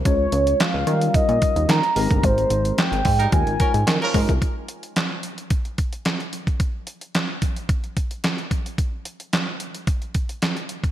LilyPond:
<<
  \new Staff \with { instrumentName = "Soft synth lead" } { \time 4/4 \key ees \mixolydian \tempo 4 = 110 des''4 f''4 ees''4 bes''4 | c''4 g''4 aes''4. r8 | r1 | r1 |
r1 | }
  \new Staff \with { instrumentName = "Tine electric piano" } { \time 4/4 \key ees \mixolydian <aes des' f' des''>4 r8 <ges g des' ees' f' bes'>4. r8 <aes c' ees' g' bes'>8~ | <aes c' ees' g' bes'>4 r4 <aes des' ees' f' bes'>4 r8 <aes des' ees' f' bes'>8 | r1 | r1 |
r1 | }
  \new Staff \with { instrumentName = "Horn section" } { \time 4/4 \key ees \mixolydian r1 | r4. r16 <g ees' bes'>16 r8 <f des' bes'>16 r8 <f des' bes'>8 r16 | r1 | r1 |
r1 | }
  \new Staff \with { instrumentName = "Analog synth bass" } { \clef bass \time 4/4 \key ees \mixolydian des,8 des,8 r16 des,16 ees8 r16 bes,16 r16 ees,16 ees16 r16 aes,,16 g,,16 | aes,,8 aes,,8 r16 aes,,16 aes,8 ees,16 aes,,16 r16 aes,16 ees16 r16 aes,16 c,16 | r1 | r1 |
r1 | }
  \new DrumStaff \with { instrumentName = "Drums" } \drummode { \time 4/4 <hh bd>8 hh16 hh16 <hc hh sn>8 hh16 hh16 <hh bd>16 hh16 <hh bd>16 hh16 <hc hh sn>16 hh16 hho16 <hh bd>16 | <hh bd>16 hh16 hh16 hh16 <hc hh sn>16 hh16 <hho bd>16 hh16 <hh bd>16 hh16 <hh bd>16 hh16 <hc hh sn>16 hh16 <hho bd>16 <hh bd>16 | <hh bd>8 hh16 hh16 <hc hh sn>8 hh16 hh16 <hh bd>16 hh16 <hh bd>16 hh16 <hc hh sn>16 hh16 hh16 <hh bd>16 | <hh bd>8 hh16 hh16 <hc hh sn>8 <hh bd>16 hh16 <hh bd>16 hh16 <hh bd>16 hh16 <hc hh sn>16 hh16 <hh bd>16 hh16 |
<hh bd>8 hh16 hh16 <hc hh sn>8 hh16 hh16 <hh bd>16 hh16 <hh bd>16 hh16 <hc hh sn>16 hh16 hh16 <hh bd>16 | }
>>